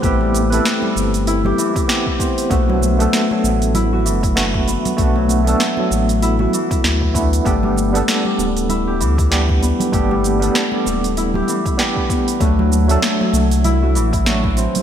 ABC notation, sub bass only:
X:1
M:4/4
L:1/8
Q:"Swing 16ths" 1/4=97
K:Bphr
V:1 name="Sub bass" clef=bass
A,,,2 z G,,,2 z3 | B,,,2 z A,,,2 F,,,2 z | B,,,2 z A,,,2 z D,,2 | G,,,2 z D,,,2 D,,2 z |
G,,,2 z D,,,2 z3 | D,,2 z C,,2 A,,,2 z |]